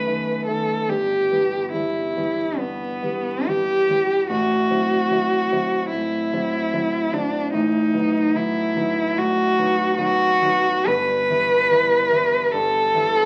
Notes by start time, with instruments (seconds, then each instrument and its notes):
Already playing: grand piano F#2 D#3 A3 B3, cello B4
0.06 grand piano D#3 A3 B3
0.47 grand piano D#3 A3 B3, cello A4
0.89 grand piano G1 G2, cello G4
1.31 grand piano E3 G3 B3
1.73 grand piano E3 G3 B3, cello E4
2.16 grand piano E3 G3 B3
2.58 grand piano G2, cello B3
3.02 grand piano E3 G3 B3
3.47 grand piano E3 G3 B3, cello G4
3.88 grand piano E3 G3 B3
4.29 grand piano A1 A2, cello F#4
4.70 grand piano F#3 C4 E4
5.11 grand piano F#3 C4 E4
5.52 grand piano F#3 C4 E4
5.90 grand piano A2, cello E4
6.33 grand piano F#3 C4 E4
6.73 grand piano F#3 C4 E4
7.13 grand piano F#3 C4 E4, cello D4
7.53 grand piano A1 A2, cello D#4
7.94 grand piano F#3 B3 D#4
8.34 grand piano F#3 B3 D#4, cello E4
8.76 grand piano F#3 B3 D#4
9.17 grand piano A2, cello F#4
9.58 grand piano F#3 B3 D#4
9.98 grand piano F#3 B3 D#4, cello F#4
10.42 grand piano F#3 B3 D#4
10.86 grand piano G1 G2, cello B4
11.29 grand piano E3 B3 E4
11.71 grand piano E3 B3 E4
12.11 grand piano E3 B3 E4
12.52 grand piano G2, cello A4
12.94 grand piano E3 B3 E4